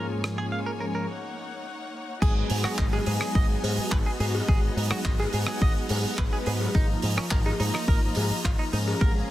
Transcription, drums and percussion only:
0.24 cross-stick medium
2.22 kick loud
2.22 crash loud
2.50 open hi-hat loud
2.64 cross-stick medium
2.78 kick loud
2.78 clap loud
2.93 cowbell medium
3.06 open hi-hat loud
3.21 cross-stick medium
3.35 kick loud
3.64 open hi-hat loud
3.64 cowbell medium
3.92 kick loud
3.92 clap loud
4.20 open hi-hat medium
4.35 cowbell medium
4.48 kick loud
4.77 open hi-hat loud
4.91 cross-stick medium
5.05 kick loud
5.05 clap loud
5.20 cowbell medium
5.33 open hi-hat loud
5.47 cross-stick medium
5.62 kick loud
5.89 open hi-hat loud
5.89 cowbell medium
6.18 kick loud
6.18 clap loud
6.46 open hi-hat loud
6.61 cowbell medium
6.75 kick loud
7.02 open hi-hat loud
7.18 cross-stick medium
7.31 kick loud
7.31 clap loud
7.46 cowbell medium
7.60 open hi-hat loud
7.75 cross-stick medium
7.88 kick loud
8.15 open hi-hat loud
8.15 cowbell medium
8.45 kick loud
8.45 clap loud
8.73 open hi-hat loud
8.88 cowbell loud
9.01 kick loud

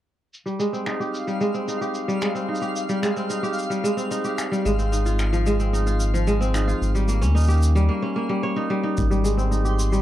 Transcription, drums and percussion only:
0.34 shaker medium
0.47 shaker soft
0.60 shaker medium
0.74 shaker soft
0.86 finger snap medium
0.86 shaker soft
1.01 shaker soft
1.14 shaker medium
1.28 shaker soft
1.41 shaker soft
1.54 shaker soft
1.68 shaker medium
1.82 shaker soft
1.94 shaker soft
2.09 shaker soft
2.22 finger snap medium
2.22 shaker medium
2.35 shaker soft
2.55 shaker soft
2.62 shaker soft
2.76 shaker medium
2.89 shaker soft
3.03 finger snap medium
3.03 shaker soft
3.17 shaker soft
3.30 shaker medium
3.44 shaker soft
3.53 shaker soft
3.58 shaker medium
3.62 shaker soft
3.71 shaker soft
3.85 shaker medium
3.98 shaker soft
4.11 shaker medium
4.24 shaker soft
4.38 finger snap medium
4.38 shaker medium
4.53 shaker soft
4.66 shaker medium
4.79 shaker soft
4.93 shaker medium
5.06 shaker soft
5.19 finger snap medium
5.19 shaker soft
5.33 shaker soft
5.47 shaker medium
5.60 shaker soft
5.75 shaker medium
5.87 shaker soft
6.00 shaker medium
6.15 shaker soft
6.27 shaker medium
6.42 shaker soft
6.54 finger snap medium
6.54 shaker medium
6.69 shaker soft
6.83 shaker soft
6.96 shaker soft
7.08 shaker medium
7.22 shaker soft
7.37 shaker soft
7.40 shaker soft
7.43 shaker soft
7.47 shaker soft
7.50 shaker soft
7.53 shaker soft
7.57 shaker soft
7.60 shaker soft
7.63 shaker medium
7.76 shaker soft
8.98 kick loud
8.98 shaker medium
9.12 shaker soft
9.25 shaker medium
9.39 shaker soft
9.52 shaker medium
9.65 shaker soft
9.79 shaker medium
9.93 shaker soft

